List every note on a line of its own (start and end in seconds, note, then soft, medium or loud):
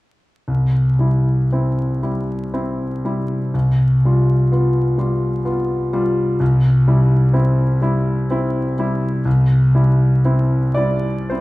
0.48 3.50 C2 soft
0.99 1.47 G3 soft
0.99 1.47 E4 soft
1.53 1.99 C4 soft
1.53 1.99 E4 soft
2.03 2.49 G3 soft
2.03 2.49 E4 soft
2.54 3.00 C4 soft
2.54 3.00 E4 soft
3.05 3.51 G3 soft
3.05 3.51 E4 soft
3.54 6.37 C2 soft
4.05 4.48 G3 soft
4.05 4.49 F4 soft
4.52 4.95 B3 soft
4.52 4.95 F4 soft
4.98 5.42 G3 soft
4.98 5.42 F4 soft
5.45 5.89 B3 soft
5.45 5.89 F4 soft
5.93 6.37 G3 soft
5.93 6.37 F4 medium
6.40 9.21 C2 medium
6.88 7.31 G3 soft
6.88 7.31 E4 soft
7.33 7.78 C4 soft
7.33 7.78 E4 soft
7.82 8.26 G3 soft
7.82 8.27 E4 medium
8.31 8.74 C4 soft
8.31 8.74 E4 medium
8.79 9.22 G3 soft
8.79 9.22 E4 medium
9.25 11.41 C2 medium
9.75 10.21 G3 soft
9.75 10.21 E4 soft
10.25 10.73 C4 soft
10.25 10.73 E4 soft
10.74 11.27 G3 soft
10.74 11.28 E4 soft
10.74 11.30 D5 medium
11.30 11.41 C4 soft
11.30 11.41 E4 soft
11.30 11.41 C5 soft